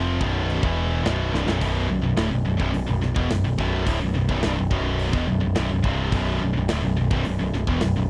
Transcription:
0.00 0.18 F1 loud
0.00 0.20 F2 loud
0.00 0.21 C3 loud
0.00 0.19 F3 loud
0.00 0.21 F3 loud
0.21 0.60 B0 medium
0.21 0.62 B1 medium
0.21 0.62 F#2 loud
0.21 0.63 B2 loud
0.21 kick loud
0.50 crash medium
0.63 1.02 E1 medium
0.63 1.03 E2 medium
0.63 1.04 B2 medium
0.63 1.05 E3 loud
0.63 kick loud
1.04 1.31 B0 medium
1.04 1.31 B1 medium
1.04 1.32 F#2 medium
1.04 1.32 B2 loud
1.04 snare loud
1.04 crash medium
1.31 1.46 C1 medium
1.31 1.45 C2 loud
1.31 1.46 G2 loud
1.31 snare medium
1.45 1.60 B0 medium
1.45 1.57 B1 medium
1.45 1.58 F#2 loud
1.45 snare loud
1.59 1.87 B0 medium
1.59 1.87 B1 loud
1.59 1.87 F#2 loud
1.59 1.88 B2 loud
1.59 kick loud
1.59 open hi-hat medium
1.88 2.02 B0 medium
1.88 2.00 B1 medium
1.88 2.01 F#2 medium
2.02 2.16 B0 medium
2.02 2.16 B1 medium
2.02 2.16 F#2 medium
2.16 2.30 D1 medium
2.16 2.30 D2 loud
2.16 2.30 A2 loud
2.16 snare loud
2.16 open hi-hat medium
2.31 2.45 B0 medium
2.31 2.43 B1 medium
2.31 2.44 F#2 medium
2.45 2.59 B0 medium
2.45 2.58 B1 medium
2.45 2.59 F#2 medium
2.59 2.73 B0 medium
2.59 2.72 B1 medium
2.59 2.71 F#2 loud
2.59 kick loud
2.73 2.87 B0 medium
2.73 2.86 B1 medium
2.73 2.86 F#2 medium
2.73 open hi-hat medium
2.87 3.01 B0 medium
2.87 3.00 B1 medium
2.87 3.00 F#2 medium
3.01 3.15 B0 medium
3.01 3.15 B1 medium
3.01 3.16 F#2 medium
3.01 snare soft
3.16 3.29 E1 medium
3.16 3.29 E2 medium
3.16 3.30 B2 loud
3.16 kick loud
3.30 3.43 B0 medium
3.30 3.44 B1 medium
3.30 3.44 F#2 medium
3.30 snare loud
3.30 open hi-hat medium
3.44 3.57 B0 medium
3.44 3.57 B1 medium
3.44 3.58 F#2 medium
3.58 3.85 B0 loud
3.58 3.85 B1 medium
3.58 3.86 F#2 loud
3.58 3.86 B2 loud
3.58 kick loud
3.86 4.00 D1 medium
3.86 3.99 D2 loud
3.86 4.00 A2 loud
3.86 kick loud
3.86 open hi-hat medium
4.00 4.14 B0 medium
4.00 4.14 B1 medium
4.00 4.14 F#2 medium
4.15 4.28 B0 medium
4.15 4.28 B1 medium
4.15 4.28 F#2 medium
4.29 4.42 B0 loud
4.29 4.41 B1 loud
4.29 4.42 F#2 loud
4.29 kick loud
4.41 4.57 C1 loud
4.41 4.55 C2 loud
4.41 4.56 G2 loud
4.41 snare loud
4.41 open hi-hat medium
4.58 4.71 B0 medium
4.58 4.70 B1 medium
4.58 4.70 F#2 medium
4.71 5.10 B0 medium
4.71 5.13 B1 medium
4.71 5.13 F#2 loud
4.71 5.13 B2 loud
4.71 kick loud
4.99 open hi-hat medium
5.13 5.27 E1 loud
5.13 5.27 E2 medium
5.13 5.27 B2 medium
5.13 kick loud
5.28 5.42 B0 medium
5.28 5.39 B1 medium
5.28 5.40 F#2 medium
5.40 5.55 B1 medium
5.40 5.55 F#2 medium
5.45 5.56 B0 medium
5.55 5.70 B0 loud
5.55 5.69 B1 medium
5.55 5.70 F#2 loud
5.55 snare loud
5.55 open hi-hat medium
5.71 5.83 B0 medium
5.71 5.85 B1 medium
5.71 5.85 F#2 medium
5.83 6.10 C1 loud
5.83 6.12 C2 medium
5.83 6.12 G2 loud
5.83 6.13 C3 loud
5.83 kick loud
6.12 6.39 B0 loud
6.12 6.40 B1 loud
6.12 6.41 F#2 loud
6.12 6.41 B2 loud
6.12 kick loud
6.12 open hi-hat medium
6.42 6.54 B0 medium
6.42 6.55 B1 medium
6.42 6.56 F#2 medium
6.53 6.69 B0 medium
6.53 6.68 B1 medium
6.57 6.69 B1 medium
6.57 6.69 F#2 medium
6.68 6.83 D1 loud
6.68 6.82 D2 loud
6.68 6.82 A2 loud
6.68 snare loud
6.68 open hi-hat medium
6.84 6.97 B0 medium
6.84 6.95 B1 medium
6.84 6.95 F#2 medium
6.97 7.10 B0 medium
6.97 7.10 B1 medium
6.97 7.11 F#2 medium
7.11 7.24 B0 medium
7.11 7.25 B1 medium
7.11 7.25 F#2 medium
7.11 kick loud
7.25 7.40 B0 medium
7.25 7.38 B1 medium
7.25 7.39 F#2 medium
7.25 open hi-hat medium
7.40 7.53 B0 medium
7.40 7.53 B1 medium
7.40 7.54 F#2 medium
7.54 7.66 B0 medium
7.54 7.67 B1 medium
7.54 7.68 F#2 medium
7.54 snare soft
7.67 7.80 E1 loud
7.67 7.81 E2 medium
7.67 7.82 B2 medium
7.67 kick loud
7.81 7.96 B0 medium
7.81 7.96 B1 medium
7.81 7.96 F#2 medium
7.81 snare loud
7.81 open hi-hat medium
7.97 8.09 B0 medium
7.97 8.09 B1 medium
7.97 8.09 F#2 medium

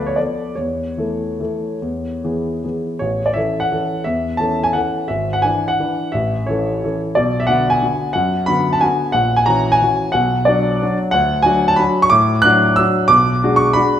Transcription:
0.00 0.18 D2 soft
0.00 0.14 F3 soft
0.00 0.14 B3 soft
0.00 0.14 A4 soft
0.00 0.19 B4 medium
0.00 0.16 D5 medium
0.07 0.17 C#5 medium
0.16 0.54 F3 soft
0.16 0.54 B3 soft
0.16 0.54 A4 soft
0.16 0.57 D5 medium
0.55 0.96 E2 soft
0.55 2.83 C#5 medium
0.98 1.35 E3 soft
0.98 1.36 A3 soft
0.98 1.36 A4 soft
1.39 1.77 E3 soft
1.39 1.78 A3 soft
1.39 1.78 A4 soft
1.82 2.22 E2 soft
2.24 2.60 E3 soft
2.24 2.61 B3 soft
2.24 2.61 G#4 soft
2.64 2.99 E3 soft
2.64 2.99 B3 soft
2.64 2.99 G#4 soft
2.99 3.36 A1 soft
2.99 3.27 C#5 medium
3.26 3.36 D5 medium
3.34 3.68 E3 soft
3.34 3.68 C#4 soft
3.34 3.69 A4 soft
3.34 3.62 E5 medium
3.60 4.05 F#5 medium
3.72 4.03 E3 soft
3.72 4.03 C#4 soft
3.72 4.03 A4 soft
4.04 4.39 E2 soft
4.04 4.39 E5 medium
4.37 4.71 E3 soft
4.37 4.72 C#4 soft
4.37 4.72 A4 soft
4.37 4.65 A5 medium
4.64 4.74 G#5 medium
4.73 5.07 E3 soft
4.73 5.07 C#4 soft
4.73 5.07 A4 soft
4.73 5.10 F#5 medium
5.08 5.43 G#1 soft
5.08 5.35 E5 medium
5.33 5.43 F#5 medium
5.42 5.77 E3 soft
5.42 5.77 D4 soft
5.42 5.77 B4 soft
5.42 5.70 G#5 medium
5.68 6.13 F#5 medium
5.80 6.11 E3 soft
5.80 6.11 D4 soft
5.80 6.11 B4 soft
6.12 6.48 A1 medium
6.12 6.47 E5 medium
6.47 6.80 E3 soft
6.47 6.80 C#4 soft
6.47 6.81 A4 soft
6.47 7.00 C#5 medium
6.84 7.14 E3 soft
6.84 7.14 C#4 soft
6.84 7.14 A4 soft
7.15 7.48 B1 medium
7.15 7.40 D5 medium
7.40 7.49 E5 medium
7.47 7.79 D3 soft
7.47 7.79 B3 soft
7.47 7.79 F#4 soft
7.47 7.73 F#5 medium
7.70 8.14 G#5 medium
7.82 8.12 D3 soft
7.82 8.13 B3 soft
7.82 8.13 F#4 soft
8.13 8.47 F#2 medium
8.13 8.47 F#5 medium
8.46 8.79 D3 soft
8.46 8.79 B3 soft
8.46 8.79 F#4 soft
8.46 8.73 B5 medium
8.73 8.82 A5 medium
8.81 9.12 D3 soft
8.81 9.12 B3 soft
8.81 9.12 F#4 soft
8.81 9.14 G#5 medium
9.12 9.46 A#1 medium
9.12 9.38 F#5 medium
9.36 9.46 G#5 medium
9.46 9.79 E3 soft
9.46 9.79 C#4 soft
9.46 9.79 F#4 soft
9.46 9.72 A#5 medium
9.72 10.15 G#5 loud
9.82 10.12 E3 soft
9.82 10.12 C#4 soft
9.82 10.12 F#4 soft
10.12 10.47 B1 medium
10.12 10.47 F#5 medium
10.45 10.78 F#3 soft
10.45 10.79 D4 medium
10.45 10.79 F#4 medium
10.45 10.97 D5 medium
10.82 11.11 F#3 soft
10.82 11.11 D4 soft
10.82 11.11 F#4 soft
11.11 11.44 D2 medium
11.11 11.44 F#5 medium
11.42 11.75 F#3 medium
11.42 11.75 D4 soft
11.42 11.76 F#4 medium
11.42 11.69 G#5 medium
11.68 11.78 A5 loud
11.76 12.08 F#3 soft
11.76 12.09 D4 soft
11.76 12.09 F#4 soft
11.76 12.03 B5 medium
12.02 12.11 C#6 loud
12.10 12.43 A2 medium
12.10 12.43 D6 loud
12.42 12.75 F#3 medium
12.42 12.75 D4 medium
12.42 12.75 F#4 medium
12.42 12.77 F#6 loud
12.76 13.08 F#3 soft
12.76 13.08 D4 medium
12.76 13.08 F#4 medium
12.76 13.10 E6 loud
13.08 13.42 B1 medium
13.08 13.59 D6 loud
13.43 13.74 G#3 medium
13.43 13.74 D4 medium
13.43 13.74 F#4 medium
13.56 13.75 C#6 loud
13.73 14.00 G#3 medium
13.73 14.00 D4 medium
13.73 14.00 F#4 medium
13.73 14.00 B5 loud

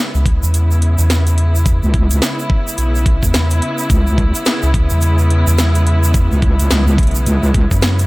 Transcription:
0.00 8.07 C#3 medium
0.00 8.07 G#3 medium
0.00 8.07 B3 medium
0.00 8.07 E4 medium
0.15 0.40 C#2 medium
0.15 shaker soft
0.26 kick loud
0.26 closed hi-hat medium
0.43 0.96 E2 medium
0.43 shaker medium
0.54 closed hi-hat medium
0.54 shaker medium
0.71 shaker soft
0.82 closed hi-hat medium
0.98 1.80 E2 medium
0.98 shaker medium
1.10 snare loud
1.10 closed hi-hat medium
1.10 shaker medium
1.27 closed hi-hat medium
1.27 shaker soft
1.38 closed hi-hat medium
1.55 shaker medium
1.66 kick loud
1.66 closed hi-hat medium
1.66 shaker medium
1.83 2.20 C#2 medium
1.83 shaker soft
1.94 kick loud
1.94 closed hi-hat soft
2.11 closed hi-hat medium
2.11 shaker medium
2.22 snare loud
2.22 closed hi-hat medium
2.22 shaker medium
2.39 shaker soft
2.50 kick loud
2.68 shaker medium
2.78 3.20 B1 medium
2.78 closed hi-hat medium
2.78 shaker medium
2.95 shaker soft
3.06 kick loud
3.06 closed hi-hat medium
3.23 3.32 E2 medium
3.23 kick medium
3.23 shaker medium
3.34 3.61 E2 medium
3.34 snare loud
3.34 closed hi-hat medium
3.34 shaker medium
3.50 closed hi-hat medium
3.50 shaker soft
3.62 closed hi-hat medium
3.78 shaker medium
3.90 4.32 C#2 medium
3.90 kick loud
3.90 closed hi-hat medium
3.90 shaker medium
4.07 shaker soft
4.18 kick loud
4.18 closed hi-hat soft
4.35 closed hi-hat medium
4.35 shaker medium
4.46 snare loud
4.46 closed hi-hat medium
4.46 shaker medium
4.62 4.89 C#2 loud
4.62 shaker soft
4.74 kick loud
4.74 closed hi-hat medium
4.90 5.45 E2 medium
4.90 shaker medium
5.01 closed hi-hat medium
5.01 shaker medium
5.18 shaker soft
5.30 closed hi-hat medium
5.47 6.29 E2 medium
5.47 shaker medium
5.58 snare loud
5.58 closed hi-hat medium
5.58 shaker medium
5.75 closed hi-hat medium
5.75 shaker soft
5.87 closed hi-hat medium
6.03 shaker medium
6.14 kick loud
6.14 closed hi-hat medium
6.14 shaker medium
6.31 6.69 C#2 medium
6.31 shaker soft
6.42 kick loud
6.42 closed hi-hat soft
6.59 closed hi-hat medium
6.59 shaker medium
6.70 6.97 C#2 loud
6.70 snare loud
6.70 closed hi-hat medium
6.70 shaker medium
6.88 shaker soft
6.98 7.25 B1 medium
6.98 kick loud
6.98 closed hi-hat medium
7.03 closed hi-hat soft
7.07 closed hi-hat soft
7.11 closed hi-hat soft
7.11 shaker medium
7.26 7.69 C#2 medium
7.26 closed hi-hat medium
7.26 shaker medium
7.43 shaker soft
7.54 kick loud
7.54 closed hi-hat medium
7.71 8.07 F#2 medium
7.71 kick medium
7.71 shaker medium
7.82 snare loud
7.82 closed hi-hat medium
7.82 shaker medium
7.99 closed hi-hat medium
7.99 shaker soft

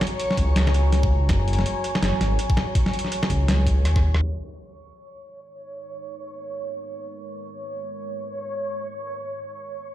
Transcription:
0.00 4.80 F#4 medium
0.00 4.20 C#5 medium
0.00 5.43 C#5 medium
0.00 5.20 G#5 medium
0.00 5.25 A#5 medium
0.00 snare medium
0.00 closed hi-hat soft
0.07 closed hi-hat medium
0.20 closed hi-hat medium
0.31 snare soft
0.37 1.28 C#2 medium
0.37 kick medium
0.37 closed hi-hat medium
0.56 snare loud
0.56 closed hi-hat medium
0.67 snare medium
0.74 closed hi-hat medium
0.92 snare soft
0.92 closed hi-hat medium
1.03 kick loud
1.29 1.65 F#1 loud
1.29 kick loud
1.29 snare medium
1.29 closed hi-hat medium
1.48 closed hi-hat soft
1.53 closed hi-hat medium
1.59 snare medium
1.66 closed hi-hat medium
1.84 closed hi-hat medium
1.95 snare medium
2.02 2.12 F#1 medium
2.02 snare loud
2.02 closed hi-hat medium
2.21 2.38 G#1 medium
2.21 snare medium
2.21 closed hi-hat medium
2.39 closed hi-hat medium
2.50 kick loud
2.57 snare medium
2.75 kick loud
2.75 closed hi-hat medium
2.86 snare medium
2.93 closed hi-hat soft
2.99 closed hi-hat medium
3.05 snare soft
3.12 closed hi-hat medium
3.23 snare medium
3.30 3.87 C#2 medium
3.30 kick medium
3.30 closed hi-hat medium
3.48 snare loud
3.48 snare medium
3.48 closed hi-hat medium
3.67 kick medium
3.67 closed hi-hat medium
3.85 4.21 D#2 loud
3.85 cross-stick medium
3.85 closed hi-hat medium
3.96 kick loud
3.96 cross-stick medium
4.14 cross-stick medium
4.21 9.95 G#3 medium
4.21 9.95 C#5 medium
4.26 9.95 D#4 medium
4.69 9.95 A#4 medium
5.15 9.95 B4 medium

